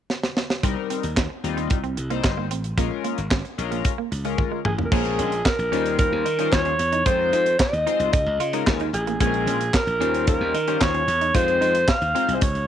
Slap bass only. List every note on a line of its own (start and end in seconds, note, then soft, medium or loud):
0.63 0.75 C2 loud
1.04 1.26 D#2 medium
1.44 1.71 D#2 medium
1.71 1.93 C2 medium
1.97 2.20 C2 medium
2.24 2.51 G1 loud
2.51 2.74 A1 medium
2.78 2.89 A#1 loud
3.18 3.41 G#1 medium
3.58 3.81 A#1 medium
4.12 4.34 C#2 medium
4.65 4.88 A1 medium
4.92 5.15 A#1 loud
5.19 5.41 A#1 medium
5.59 5.70 A#1 medium
5.72 6.06 D#2 loud
6.12 6.24 D#2 medium
6.26 6.48 D#3 medium
6.52 6.75 D#2 medium
6.79 7.02 E2 loud
7.06 7.29 F2 loud
7.32 7.55 F2 loud
7.73 7.84 D#2 medium
8.00 8.11 C2 loud
8.13 8.25 C#2 loud
8.26 8.38 C#2 loud
8.39 8.62 C#3 medium
8.67 8.90 D#2 loud
8.93 9.16 A1 medium
9.20 9.43 A#1 loud
9.47 9.70 A#1 loud
9.87 9.98 A#1 medium
10.00 10.34 D#2 loud
10.41 10.52 D#2 medium
10.54 10.77 D#3 loud
10.81 11.04 D#2 loud
11.08 11.30 E2 medium
11.35 11.57 F2 loud
11.61 11.84 F2 loud
12.01 12.13 D#2 medium
12.28 12.40 C2 medium
12.42 12.53 C#2 loud
12.55 12.66 C#2 medium